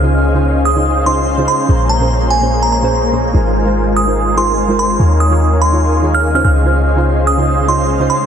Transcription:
0.00 1.46 C#2 medium
0.00 1.67 C#3 medium
0.00 0.20 C#3 medium
0.00 3.31 G#3 medium
0.00 1.66 C#4 medium
0.00 0.20 C#4 medium
0.00 0.20 D#4 medium
0.00 1.67 F4 medium
0.00 0.20 F4 medium
0.00 1.66 G#4 medium
0.00 1.66 C5 medium
0.00 1.67 C5 medium
0.00 1.66 D#5 medium
0.00 1.66 F5 medium
0.04 0.21 C5 medium
0.34 0.44 C#3 medium
0.34 0.44 C#4 medium
0.34 0.44 D#4 medium
0.34 0.45 F4 medium
0.34 0.45 C5 medium
0.65 1.05 D#6 medium
0.76 1.04 C#3 medium
0.76 1.04 C#4 medium
0.76 1.04 D#4 medium
0.76 1.05 F4 medium
0.76 1.05 C5 medium
1.05 1.35 C#3 medium
1.05 1.36 C#4 medium
1.05 1.36 D#4 medium
1.05 1.36 F4 medium
1.05 1.36 C5 medium
1.05 1.19 C6 medium
1.38 1.54 C#3 medium
1.38 1.54 C#4 medium
1.38 1.55 D#4 medium
1.38 1.55 F4 medium
1.38 1.55 C5 medium
1.48 1.61 C6 medium
1.68 3.32 A#1 medium
1.68 1.85 A#2 medium
1.68 1.85 A#3 medium
1.68 3.33 A#3 medium
1.68 3.32 A#3 medium
1.68 1.86 C#4 medium
1.68 3.33 C#4 medium
1.68 3.32 G#4 medium
1.68 1.86 G#4 medium
1.68 3.32 C5 medium
1.68 1.86 C5 medium
1.68 3.32 C#5 medium
1.68 3.32 A#5 medium
1.89 2.02 A#5 medium
2.00 2.10 A#2 medium
2.00 2.10 A#3 medium
2.00 2.10 C#4 medium
2.00 2.10 G#4 medium
2.00 2.11 C5 medium
2.30 2.60 G#5 medium
2.41 2.69 A#2 medium
2.41 2.70 A#3 medium
2.41 2.70 C#4 medium
2.41 2.70 G#4 medium
2.41 2.70 C5 medium
2.63 2.69 A#5 medium
2.72 2.80 A#5 medium
2.82 2.92 A#2 loud
2.82 2.92 A#3 medium
2.82 2.93 C#4 medium
2.82 2.93 G#4 medium
2.82 2.93 C5 loud
3.12 3.24 A#2 medium
3.12 3.24 A#3 medium
3.12 3.25 C#4 medium
3.12 3.25 G#4 medium
3.12 3.25 C5 medium
3.33 4.98 G#1 medium
3.33 3.50 G#3 medium
3.33 4.97 G#3 medium
3.33 4.98 G#3 medium
3.33 4.98 C4 medium
3.33 3.51 D#4 medium
3.33 3.51 F4 medium
3.33 4.97 F4 medium
3.33 4.98 F4 medium
3.33 4.97 A#4 medium
3.33 3.51 A#4 medium
3.33 4.97 C5 medium
3.33 3.51 C5 medium
3.33 4.97 G#5 medium
3.65 3.75 G#3 medium
3.65 3.75 D#4 medium
3.65 3.75 F4 medium
3.65 3.76 A#4 medium
3.65 3.76 C5 medium
3.96 4.36 D#6 medium
4.06 4.35 G#3 medium
4.06 4.35 D#4 medium
4.06 4.35 F4 medium
4.06 4.35 A#4 medium
4.06 4.36 C5 medium
4.36 4.66 G#3 medium
4.36 4.67 D#4 medium
4.36 4.67 F4 medium
4.36 4.67 A#4 medium
4.36 4.67 C5 medium
4.36 4.50 C6 medium
4.68 4.85 G#3 medium
4.68 4.85 D#4 medium
4.68 4.86 F4 medium
4.68 4.86 A#4 medium
4.68 4.86 C5 medium
4.79 4.92 C6 medium
4.98 6.43 D#2 medium
4.98 5.16 D#3 medium
4.98 6.43 D#3 medium
4.98 6.43 A#3 medium
4.98 6.43 C#4 medium
4.98 5.16 D#4 medium
4.98 6.42 D#4 medium
4.98 5.16 F4 medium
4.98 6.43 G#4 medium
4.98 5.17 G#4 medium
4.98 6.42 A#4 medium
4.98 6.42 C#5 medium
4.98 5.17 C#5 medium
4.98 6.42 F5 medium
4.98 6.42 G#5 medium
5.20 5.33 D#6 medium
5.30 5.40 D#3 medium
5.30 5.41 D#4 medium
5.30 5.41 F4 medium
5.30 5.41 G#4 medium
5.30 5.41 C#5 medium
5.62 5.74 C6 medium
5.72 6.00 D#3 medium
5.72 6.01 D#4 medium
5.72 6.01 F4 medium
5.72 6.01 G#4 medium
5.72 6.01 C#5 medium
6.02 6.32 D#3 medium
6.02 6.32 D#4 medium
6.02 6.32 F4 medium
6.02 6.33 G#4 medium
6.02 6.33 C#5 medium
6.14 6.26 F6 medium
6.34 6.51 C#3 medium
6.34 6.51 C#4 medium
6.34 6.51 D#4 medium
6.34 6.51 F4 medium
6.34 6.52 C5 loud
6.34 6.41 F6 medium
6.44 8.08 C#2 medium
6.44 8.26 C#3 medium
6.44 8.26 G#3 medium
6.44 8.26 C#4 medium
6.44 8.26 F4 medium
6.44 8.26 G#4 medium
6.44 8.26 C5 medium
6.44 8.26 D#5 medium
6.44 8.26 F5 medium
6.44 6.52 F6 medium
6.64 6.82 C#3 medium
6.64 6.82 C#4 medium
6.64 6.82 D#4 medium
6.64 6.82 F4 medium
6.64 6.83 C5 medium
6.96 7.06 C#3 medium
6.96 7.06 C#4 medium
6.96 7.06 D#4 medium
6.96 7.07 F4 medium
6.96 7.07 C5 medium
7.27 7.67 D#6 medium
7.37 7.66 C#3 medium
7.37 7.66 C#4 medium
7.37 7.66 D#4 medium
7.37 7.67 F4 medium
7.37 7.67 C5 medium
7.67 7.97 C#3 medium
7.67 7.98 C#4 medium
7.67 7.98 D#4 medium
7.67 7.98 F4 medium
7.67 7.98 C5 medium
7.67 7.81 C6 medium
7.99 8.16 C#3 medium
7.99 8.16 C#4 medium
7.99 8.17 D#4 medium
7.99 8.17 F4 medium
7.99 8.17 C5 loud
8.10 8.23 C6 medium

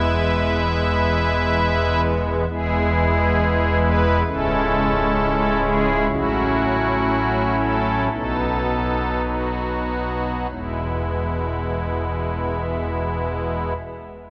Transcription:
0.00 2.45 E1 soft
0.00 2.46 E2 soft
0.00 2.45 G#3 soft
0.00 2.45 B3 soft
0.00 2.01 E4 medium
0.00 2.01 B4 medium
0.00 2.01 E5 medium
2.49 4.23 E1 medium
2.49 4.23 E2 medium
2.49 4.23 G#3 soft
2.49 4.23 B3 soft
2.49 4.23 E4 soft
2.49 3.78 G#4 medium
3.82 4.20 B4 loud
4.27 6.07 C#1 medium
4.27 6.07 C#2 medium
4.27 6.07 G#3 soft
4.27 6.07 C#4 soft
4.27 6.08 E4 soft
4.27 5.60 A4 medium
5.64 6.04 G#4 loud
6.11 8.08 A1 medium
6.11 8.09 A2 medium
6.11 8.08 F#3 medium
6.11 8.08 C#4 medium
6.11 8.08 E4 soft
6.11 7.56 F#4 loud
7.60 8.04 A4 loud
8.12 10.47 B1 medium
8.12 10.47 B2 medium
8.12 10.47 F#3 soft
8.12 10.47 B3 soft
8.12 10.47 D#4 medium
8.12 9.22 A4 medium
9.26 10.47 F#4 medium
10.50 13.73 E1 medium
10.50 13.73 E2 medium
10.50 13.73 B2 soft
10.50 13.73 G#3 soft
10.50 13.73 B3 soft
10.50 13.73 E4 medium

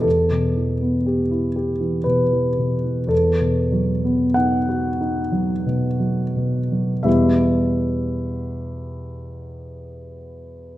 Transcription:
0.01 3.06 E2 soft
0.01 2.05 A4 medium
0.31 0.72 B2 soft
0.57 0.97 E3 soft
0.81 1.21 B3 soft
1.06 1.46 G4 soft
1.31 1.71 E4 soft
1.56 1.96 G4 soft
1.81 2.21 E3 soft
2.04 2.47 B2 soft
2.04 3.10 B4 medium
2.32 2.73 E3 soft
2.58 3.00 B2 soft
2.84 3.11 E3 soft
3.07 6.99 E2 soft
3.07 4.35 A4 medium
3.41 3.91 B2 soft
3.72 4.24 F#3 soft
4.05 4.56 B3 soft
4.34 4.88 D#4 soft
4.34 5.64 F#5 medium
4.69 5.19 F#4 soft
5.01 5.52 D#4 soft
5.32 5.86 F#3 soft
5.66 6.22 B2 soft
6.00 6.58 F#3 soft
6.36 6.92 B2 soft
6.72 7.05 F#3 soft
7.03 10.78 E2 soft
7.03 10.78 B2 soft
7.03 10.78 G3 soft
7.03 10.78 B3 soft
7.03 10.78 E4 soft
7.03 10.78 G4 soft
7.03 10.78 E5 soft

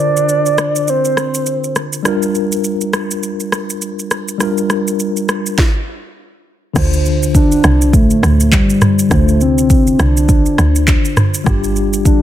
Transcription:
0.00 2.00 D3 medium
0.00 2.01 D4 medium
0.00 2.02 F4 medium
0.00 2.08 A#4 medium
0.00 2.06 C5 medium
0.00 0.91 D5 loud
0.17 shaker medium
0.29 shaker medium
0.46 shaker soft
0.58 cross-stick loud
0.58 shaker medium
0.76 shaker medium
0.88 1.77 C5 medium
0.88 shaker medium
1.05 shaker soft
1.17 cross-stick medium
1.17 shaker medium
1.34 shaker loud
1.46 shaker medium
1.64 shaker soft
1.76 cross-stick medium
1.76 shaker soft
1.93 shaker medium
2.03 4.35 G3 medium
2.03 4.36 D4 medium
2.03 4.37 F4 medium
2.03 cross-stick medium
2.03 shaker medium
2.08 4.38 A#4 medium
2.22 shaker medium
2.35 shaker soft
2.52 shaker medium
2.64 shaker medium
2.81 shaker soft
2.93 cross-stick loud
2.93 shaker soft
3.11 shaker medium
3.23 shaker medium
3.40 shaker soft
3.52 cross-stick loud
3.52 shaker medium
3.70 shaker loud
3.82 shaker medium
3.99 shaker soft
4.11 cross-stick medium
4.11 shaker medium
4.28 shaker medium
4.38 5.55 G3 medium
4.38 5.55 D4 medium
4.38 5.56 F4 medium
4.38 cross-stick medium
4.38 shaker medium
4.43 5.57 A#4 medium
4.58 shaker medium
4.70 cross-stick medium
4.70 shaker soft
4.87 shaker medium
5.00 shaker medium
5.16 shaker soft
5.29 cross-stick loud
5.29 shaker soft
5.46 shaker medium
5.58 kick loud
5.58 snare medium
6.74 7.60 D2 loud
6.74 9.06 D3 medium
6.74 9.07 D4 medium
6.74 9.08 F4 medium
6.74 kick loud
6.74 cross-stick loud
6.74 crash loud
6.74 shaker medium
6.78 9.09 C5 medium
6.93 shaker medium
7.05 shaker soft
7.23 shaker loud
7.35 7.96 D4 loud
7.35 kick loud
7.35 shaker medium
7.52 shaker medium
7.64 8.12 C2 loud
7.64 cross-stick loud
7.64 shaker medium
7.82 shaker medium
7.93 8.55 A3 loud
7.93 kick loud
7.93 shaker medium
8.11 shaker medium
8.23 8.61 D2 loud
8.23 cross-stick loud
8.23 shaker medium
8.40 shaker loud
8.52 9.14 G3 loud
8.52 kick medium
8.52 clap loud
8.52 shaker medium
8.70 shaker medium
8.81 cross-stick medium
8.81 mid tom loud
8.81 shaker medium
8.99 shaker loud
9.09 9.95 D2 loud
9.09 11.41 D3 medium
9.09 9.41 A3 loud
9.09 11.42 D4 medium
9.09 11.43 F4 medium
9.09 kick loud
9.09 cross-stick loud
9.09 shaker medium
9.14 11.44 C5 medium
9.28 shaker medium
9.41 10.02 C4 loud
9.41 shaker soft
9.58 shaker medium
9.70 kick loud
9.70 shaker medium
9.87 shaker medium
9.99 10.48 C2 medium
9.99 11.18 D4 loud
9.99 cross-stick loud
9.99 shaker medium
10.17 shaker medium
10.29 kick loud
10.29 shaker medium
10.46 shaker medium
10.58 10.96 D2 medium
10.58 cross-stick loud
10.58 shaker medium
10.76 shaker loud
10.87 kick medium
10.87 clap loud
10.87 shaker medium
11.05 shaker soft
11.17 cross-stick medium
11.17 mid tom loud
11.17 shaker medium
11.34 shaker loud
11.44 12.22 G1 loud
11.44 12.22 G3 medium
11.44 12.22 D4 medium
11.44 12.22 F4 medium
11.44 kick loud
11.44 cross-stick loud
11.44 shaker medium
11.49 12.22 G4 medium
11.64 shaker medium
11.76 shaker soft
11.93 shaker medium
12.05 12.22 D4 loud
12.05 kick medium
12.05 shaker medium

